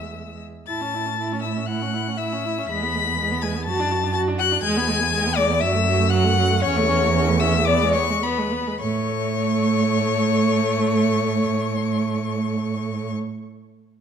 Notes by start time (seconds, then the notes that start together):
Already playing: E2 G#3 E5 E6
0.67 A2 E4 A5 A6
0.81 C#4
0.94 E4
1.06 C#4
1.19 E4
1.32 C#4
1.42 E4 E5 E6
1.57 C#4
1.66 E4 F#5 F#6
1.82 C#4
1.94 E4
2.08 C#4
2.17 E4 E5 E6
2.32 C#4
2.45 E4
2.58 C#4
2.69 E2 G#3 B5 B6
2.83 B3
2.95 G#3
3.07 B3
3.19 G#3
3.31 B3
3.41 G#3 G#5 G#6
3.56 B3
3.65 F#2 F#4 A5 A6
3.80 D4
3.91 F#4
4.04 D4
4.13 F#4 A5 A6
4.28 D4
4.38 F#4 F#5 F#6
4.52 D4
4.63 E2 G#3 G#5 G#6
4.77 B3
4.88 G#3
5.01 B3
5.13 G#3
5.26 B3
5.36 G#3 D5 D6
5.50 B3
5.60 F#2 F#3 E5 E6
5.75 A3
5.87 F#3
6.00 A3
6.10 F#3 F#5 F#6
6.24 A3
6.38 F#3
6.51 A3
6.62 E2 C#4 C#5 C#6
6.77 A3
6.89 C#4
7.03 A3
7.15 C#4
7.28 A3
7.40 C#4 E5 E6
7.56 A3
7.65 B3 D5 D6
7.82 G#3
7.93 B3 C#5 C#6
8.10 G#3
8.23 B3 B4 B5
8.38 G#3
8.52 B3
8.67 G#3
8.80 A2 A3 C#5 C#6